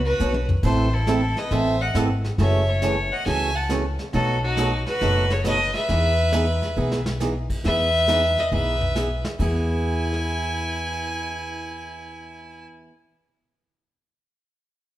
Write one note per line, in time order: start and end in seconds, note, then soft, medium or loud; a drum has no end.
0.00 0.13 C#2 medium
0.05 0.46 F#4 medium
0.05 0.46 B4 medium
0.20 0.57 B1 medium
0.20 0.32 B2 medium
0.20 0.32 F#3 medium
0.20 0.32 B3 medium
0.20 0.32 D#4 medium
0.20 0.32 F#4 medium
0.20 hi-hat pedal medium
0.20 high tom soft
0.34 high tom medium
0.49 floor tom medium
0.63 1.33 A1 medium
0.63 0.87 E3 medium
0.63 0.87 A3 medium
0.63 0.87 C4 medium
0.63 0.87 E4 medium
0.63 0.95 A4 medium
0.63 0.87 A4 medium
0.63 0.95 C5 medium
0.63 brush sweep medium
0.63 kick medium
0.63 snare soft
0.63 crash medium
0.93 1.39 E4 medium
0.93 1.39 A4 medium
1.07 1.19 E3 medium
1.07 1.20 A3 medium
1.07 1.20 C4 medium
1.07 1.20 E4 medium
1.07 1.20 A4 medium
1.07 snare medium
1.07 hi-hat pedal medium
1.36 1.53 B4 medium
1.36 1.53 D#5 medium
1.36 snare soft
1.51 1.88 A1 medium
1.51 1.74 E3 medium
1.51 1.74 A3 medium
1.51 1.74 C4 medium
1.51 1.75 E4 medium
1.51 1.75 A4 medium
1.51 1.83 C5 medium
1.51 1.82 E5 loud
1.51 brush sweep soft
1.51 snare soft
1.81 1.95 D#5 medium
1.81 1.95 F#5 medium
1.95 2.32 G#1 medium
1.95 2.07 E3 medium
1.95 2.07 A3 medium
1.95 2.07 C4 medium
1.95 2.07 E4 medium
1.95 2.08 A4 medium
1.95 snare medium
1.95 hi-hat pedal medium
2.24 snare soft
2.38 3.08 F#1 medium
2.38 2.62 C#3 medium
2.38 2.61 E3 medium
2.38 2.62 A3 medium
2.38 2.62 C#4 medium
2.38 2.62 F#4 medium
2.38 2.70 C#5 medium
2.38 2.71 E5 medium
2.38 brush sweep soft
2.38 snare soft
2.69 3.14 A4 medium
2.69 3.13 C#5 medium
2.82 2.95 C#3 medium
2.82 2.95 E3 medium
2.82 2.95 A3 medium
2.82 2.95 C#4 medium
2.82 2.95 F#4 medium
2.82 snare medium
2.82 hi-hat pedal medium
3.12 3.25 D#5 medium
3.12 3.26 F#5 medium
3.26 3.96 C#2 medium
3.26 3.49 C#3 medium
3.26 3.49 E3 medium
3.26 3.49 A3 medium
3.26 3.49 C#4 medium
3.26 3.49 F#4 medium
3.26 3.56 E5 medium
3.26 3.58 G#5 loud
3.26 brush sweep medium
3.26 snare soft
3.55 3.69 F#5 medium
3.55 3.70 A5 medium
3.69 3.82 C#3 medium
3.69 3.82 E3 medium
3.69 3.82 A3 medium
3.69 3.82 C#4 medium
3.69 3.83 F#4 medium
3.69 snare medium
3.69 hi-hat pedal medium
3.99 snare soft
4.13 4.84 B1 medium
4.13 4.37 B2 medium
4.13 4.37 F#3 medium
4.13 4.37 A3 medium
4.13 4.37 D#4 medium
4.13 4.41 F#4 medium
4.13 4.37 F#4 medium
4.13 4.41 A4 medium
4.13 brush sweep soft
4.13 snare soft
4.43 4.84 D#4 medium
4.43 4.84 F#4 medium
4.57 4.70 B2 medium
4.57 4.70 F#3 medium
4.57 4.70 A3 medium
4.57 4.70 D#4 medium
4.57 4.70 F#4 medium
4.57 snare medium
4.57 hi-hat pedal medium
4.86 5.32 F#4 medium
4.86 5.34 B4 loud
4.86 snare soft
5.01 5.71 F#1 medium
5.01 5.24 B2 medium
5.01 5.24 F#3 medium
5.01 5.24 A3 medium
5.01 5.24 D#4 medium
5.01 5.24 F#4 medium
5.01 brush sweep medium
5.01 snare soft
5.30 5.45 A4 medium
5.30 5.45 C#5 medium
5.30 snare medium
5.45 5.57 B2 medium
5.45 5.57 F#3 medium
5.45 5.57 A3 medium
5.45 5.57 D#4 medium
5.45 5.57 F#4 medium
5.45 5.73 B4 medium
5.45 5.72 D#5 loud
5.45 snare medium
5.45 hi-hat pedal medium
5.74 7.16 B4 medium
5.74 7.16 E5 loud
5.74 snare soft
5.89 6.59 E2 medium
5.89 6.12 E3 medium
5.89 6.12 B3 medium
5.89 6.12 D#4 medium
5.89 6.12 G#4 medium
5.89 brush sweep medium
5.89 snare soft
6.32 6.45 E3 medium
6.32 6.45 B3 medium
6.32 6.45 D#4 medium
6.32 6.45 G#4 medium
6.32 snare medium
6.32 hi-hat pedal medium
6.62 snare soft
6.77 7.47 B1 medium
6.77 6.99 E3 medium
6.77 6.99 B3 medium
6.77 7.00 D#4 medium
6.77 7.00 G#4 medium
6.92 snare medium
7.06 snare medium
7.20 7.32 E3 medium
7.20 7.32 B3 medium
7.20 7.33 D#4 medium
7.20 7.33 G#4 medium
7.20 snare medium
7.20 hi-hat pedal medium
7.50 kick medium
7.50 crash medium
7.64 8.35 E2 medium
7.64 7.87 E3 medium
7.64 7.87 B3 medium
7.64 7.87 D#4 medium
7.64 7.87 G#4 medium
7.64 8.39 B4 loud
7.64 8.41 E5 loud
7.64 brush sweep soft
7.64 snare soft
8.08 8.20 E3 medium
8.08 8.20 B3 medium
8.08 8.20 D#4 medium
8.08 8.20 G#4 medium
8.08 snare medium
8.08 hi-hat pedal medium
8.37 8.52 B4 medium
8.37 8.53 D#5 medium
8.37 snare soft
8.52 9.22 B1 medium
8.52 8.75 E3 medium
8.52 8.75 B3 medium
8.52 8.75 D#4 medium
8.52 8.75 G#4 medium
8.52 9.22 B4 medium
8.52 9.22 E5 medium
8.52 floor tom soft
8.81 floor tom medium
8.95 9.08 E3 medium
8.95 9.08 B3 medium
8.95 9.08 D#4 medium
8.95 9.08 G#4 medium
8.95 snare medium
8.95 hi-hat pedal medium
9.25 snare medium
9.39 12.65 E2 medium
9.39 12.89 E3 medium
9.39 12.90 B3 medium
9.39 12.64 E4 medium
9.39 12.91 G#4 medium
9.39 12.65 G#5 loud
9.39 kick medium
9.39 crash medium
10.13 cross-stick medium